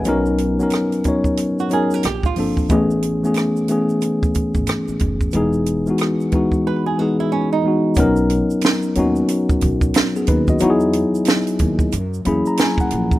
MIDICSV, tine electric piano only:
0, 0, Header, 1, 2, 480
1, 0, Start_track
1, 0, Tempo, 659341
1, 40, Time_signature, 4, 2, 24, 8
1, 9602, End_track
2, 0, Start_track
2, 0, Title_t, "Tine electric piano"
2, 0, Program_c, 0, 4
2, 0, Control_c, 0, 64, 127
2, 0, Note_on_c, 0, 71, 46
2, 0, Note_on_c, 0, 80, 54
2, 40, Note_on_c, 0, 54, 97
2, 45, Note_on_c, 0, 59, 88
2, 50, Control_c, 0, 64, 0
2, 54, Note_on_c, 0, 61, 91
2, 58, Note_on_c, 0, 63, 87
2, 63, Note_on_c, 0, 70, 104
2, 183, Note_off_c, 0, 80, 0
2, 185, Note_off_c, 0, 71, 0
2, 193, Control_c, 0, 64, 127
2, 338, Note_off_c, 0, 54, 0
2, 341, Note_off_c, 0, 59, 0
2, 345, Note_off_c, 0, 61, 0
2, 347, Note_off_c, 0, 63, 0
2, 349, Note_off_c, 0, 70, 0
2, 433, Note_on_c, 0, 54, 66
2, 439, Note_on_c, 0, 59, 63
2, 446, Note_on_c, 0, 61, 65
2, 451, Note_on_c, 0, 63, 62
2, 459, Note_on_c, 0, 70, 78
2, 707, Note_off_c, 0, 54, 0
2, 709, Note_off_c, 0, 59, 0
2, 713, Note_off_c, 0, 61, 0
2, 715, Note_off_c, 0, 63, 0
2, 719, Note_off_c, 0, 70, 0
2, 763, Note_on_c, 0, 54, 78
2, 768, Note_on_c, 0, 59, 69
2, 774, Note_on_c, 0, 61, 67
2, 782, Note_on_c, 0, 63, 65
2, 789, Note_on_c, 0, 73, 79
2, 1167, Note_off_c, 0, 54, 0
2, 1170, Note_off_c, 0, 59, 0
2, 1173, Note_off_c, 0, 61, 0
2, 1177, Note_off_c, 0, 63, 0
2, 1180, Note_off_c, 0, 73, 0
2, 1237, Note_on_c, 0, 54, 78
2, 1244, Note_on_c, 0, 59, 64
2, 1248, Note_on_c, 0, 61, 65
2, 1256, Note_on_c, 0, 63, 69
2, 1263, Note_on_c, 0, 70, 81
2, 1479, Note_off_c, 0, 54, 0
2, 1482, Note_off_c, 0, 59, 0
2, 1484, Note_off_c, 0, 61, 0
2, 1488, Note_off_c, 0, 63, 0
2, 1489, Control_c, 0, 64, 0
2, 1492, Note_off_c, 0, 70, 0
2, 1609, Control_c, 0, 64, 127
2, 1720, Note_on_c, 0, 53, 66
2, 1728, Note_on_c, 0, 58, 63
2, 1733, Note_on_c, 0, 60, 64
2, 1739, Note_on_c, 0, 62, 65
2, 1747, Note_on_c, 0, 69, 80
2, 1923, Note_off_c, 0, 53, 0
2, 1927, Note_off_c, 0, 58, 0
2, 1930, Note_off_c, 0, 60, 0
2, 1932, Note_off_c, 0, 62, 0
2, 1936, Note_off_c, 0, 69, 0
2, 1959, Note_on_c, 0, 52, 95
2, 1965, Note_on_c, 0, 57, 90
2, 1970, Control_c, 0, 64, 0
2, 1971, Note_on_c, 0, 59, 83
2, 1979, Note_on_c, 0, 61, 85
2, 1983, Note_on_c, 0, 68, 105
2, 2093, Control_c, 0, 64, 127
2, 2257, Note_off_c, 0, 52, 0
2, 2260, Note_off_c, 0, 57, 0
2, 2263, Note_off_c, 0, 59, 0
2, 2268, Note_off_c, 0, 61, 0
2, 2270, Note_off_c, 0, 68, 0
2, 2352, Note_on_c, 0, 52, 65
2, 2358, Note_on_c, 0, 57, 64
2, 2366, Note_on_c, 0, 59, 66
2, 2369, Note_on_c, 0, 61, 69
2, 2378, Note_on_c, 0, 68, 76
2, 2626, Note_off_c, 0, 52, 0
2, 2629, Note_off_c, 0, 57, 0
2, 2633, Note_off_c, 0, 59, 0
2, 2635, Note_off_c, 0, 61, 0
2, 2639, Note_off_c, 0, 68, 0
2, 2684, Note_on_c, 0, 52, 76
2, 2689, Note_on_c, 0, 57, 69
2, 2697, Note_on_c, 0, 59, 67
2, 2702, Note_on_c, 0, 61, 68
2, 2707, Note_on_c, 0, 68, 84
2, 3457, Note_off_c, 0, 52, 0
2, 3460, Note_off_c, 0, 57, 0
2, 3464, Note_off_c, 0, 59, 0
2, 3466, Note_off_c, 0, 61, 0
2, 3469, Note_off_c, 0, 68, 0
2, 3881, Note_on_c, 0, 52, 97
2, 3887, Note_on_c, 0, 56, 83
2, 3889, Control_c, 0, 64, 0
2, 3894, Note_on_c, 0, 59, 88
2, 3900, Note_on_c, 0, 63, 89
2, 3907, Note_on_c, 0, 68, 100
2, 3997, Control_c, 0, 64, 127
2, 4178, Note_off_c, 0, 52, 0
2, 4182, Note_off_c, 0, 56, 0
2, 4185, Note_off_c, 0, 59, 0
2, 4188, Note_off_c, 0, 63, 0
2, 4191, Note_off_c, 0, 68, 0
2, 4270, Note_on_c, 0, 52, 70
2, 4277, Note_on_c, 0, 56, 62
2, 4282, Note_on_c, 0, 59, 62
2, 4287, Note_on_c, 0, 63, 61
2, 4298, Note_on_c, 0, 66, 75
2, 4545, Note_off_c, 0, 52, 0
2, 4548, Note_off_c, 0, 56, 0
2, 4551, Note_off_c, 0, 59, 0
2, 4553, Note_off_c, 0, 63, 0
2, 4559, Note_off_c, 0, 66, 0
2, 4601, Note_on_c, 0, 52, 73
2, 4609, Note_on_c, 0, 56, 70
2, 4611, Note_on_c, 0, 59, 70
2, 4619, Note_on_c, 0, 63, 70
2, 4626, Note_on_c, 0, 66, 83
2, 5006, Note_off_c, 0, 52, 0
2, 5010, Note_off_c, 0, 56, 0
2, 5011, Note_off_c, 0, 59, 0
2, 5015, Note_off_c, 0, 63, 0
2, 5019, Note_off_c, 0, 66, 0
2, 5084, Note_on_c, 0, 52, 67
2, 5090, Note_on_c, 0, 56, 65
2, 5094, Note_on_c, 0, 59, 67
2, 5101, Note_on_c, 0, 63, 62
2, 5108, Note_on_c, 0, 68, 77
2, 5488, Note_off_c, 0, 52, 0
2, 5491, Note_off_c, 0, 56, 0
2, 5493, Note_off_c, 0, 59, 0
2, 5496, Note_off_c, 0, 63, 0
2, 5500, Note_off_c, 0, 68, 0
2, 5561, Note_on_c, 0, 52, 66
2, 5569, Note_on_c, 0, 56, 66
2, 5573, Note_on_c, 0, 59, 59
2, 5580, Note_on_c, 0, 63, 64
2, 5588, Note_on_c, 0, 66, 74
2, 5763, Note_off_c, 0, 52, 0
2, 5768, Note_off_c, 0, 56, 0
2, 5769, Note_off_c, 0, 59, 0
2, 5773, Note_off_c, 0, 63, 0
2, 5777, Note_off_c, 0, 66, 0
2, 5798, Note_on_c, 0, 54, 107
2, 5802, Note_on_c, 0, 59, 97
2, 5811, Control_c, 0, 64, 0
2, 5811, Note_on_c, 0, 61, 96
2, 5817, Note_on_c, 0, 63, 99
2, 5823, Note_on_c, 0, 70, 111
2, 5951, Control_c, 0, 64, 127
2, 6395, Note_off_c, 0, 54, 0
2, 6397, Note_off_c, 0, 59, 0
2, 6401, Note_off_c, 0, 61, 0
2, 6404, Note_off_c, 0, 63, 0
2, 6407, Note_off_c, 0, 70, 0
2, 6522, Note_on_c, 0, 54, 85
2, 6529, Note_on_c, 0, 59, 79
2, 6533, Note_on_c, 0, 61, 78
2, 6541, Note_on_c, 0, 63, 72
2, 6547, Note_on_c, 0, 66, 91
2, 7244, Note_off_c, 0, 59, 0
2, 7247, Note_off_c, 0, 61, 0
2, 7251, Note_off_c, 0, 63, 0
2, 7254, Note_off_c, 0, 66, 0
2, 7296, Note_off_c, 0, 54, 0
2, 7398, Note_on_c, 0, 68, 65
2, 7403, Note_on_c, 0, 59, 58
2, 7481, Note_off_c, 0, 68, 0
2, 7483, Note_off_c, 0, 59, 0
2, 7486, Note_on_c, 0, 71, 73
2, 7491, Note_on_c, 0, 63, 63
2, 7625, Note_off_c, 0, 71, 0
2, 7628, Note_off_c, 0, 63, 0
2, 7641, Note_on_c, 0, 75, 68
2, 7645, Note_on_c, 0, 66, 56
2, 7718, Note_on_c, 0, 54, 103
2, 7725, Note_on_c, 0, 59, 97
2, 7730, Control_c, 0, 64, 0
2, 7731, Note_on_c, 0, 63, 101
2, 7737, Note_off_c, 0, 66, 0
2, 7738, Note_on_c, 0, 64, 101
2, 7746, Note_on_c, 0, 66, 96
2, 7789, Note_on_c, 0, 68, 117
2, 7792, Note_off_c, 0, 66, 0
2, 7839, Control_c, 0, 64, 127
2, 7863, Note_off_c, 0, 75, 0
2, 8494, Note_off_c, 0, 54, 0
2, 8498, Note_off_c, 0, 59, 0
2, 8500, Note_off_c, 0, 63, 0
2, 8504, Note_off_c, 0, 64, 0
2, 8530, Note_off_c, 0, 68, 0
2, 8688, Control_c, 0, 64, 0
2, 8820, Control_c, 0, 64, 127
2, 8918, Note_on_c, 0, 54, 83
2, 8926, Note_on_c, 0, 58, 71
2, 8929, Note_on_c, 0, 83, 71
2, 8930, Note_on_c, 0, 61, 74
2, 8938, Note_on_c, 0, 64, 77
2, 8942, Note_on_c, 0, 68, 87
2, 9063, Note_off_c, 0, 83, 0
2, 9081, Note_on_c, 0, 82, 71
2, 9160, Note_off_c, 0, 82, 0
2, 9179, Note_on_c, 0, 80, 76
2, 9309, Note_off_c, 0, 80, 0
2, 9323, Note_on_c, 0, 78, 68
2, 9515, Note_off_c, 0, 54, 0
2, 9519, Note_off_c, 0, 58, 0
2, 9521, Note_off_c, 0, 61, 0
2, 9525, Note_off_c, 0, 64, 0
2, 9527, Note_off_c, 0, 68, 0
2, 9602, Note_off_c, 0, 78, 0
2, 9602, End_track
0, 0, End_of_file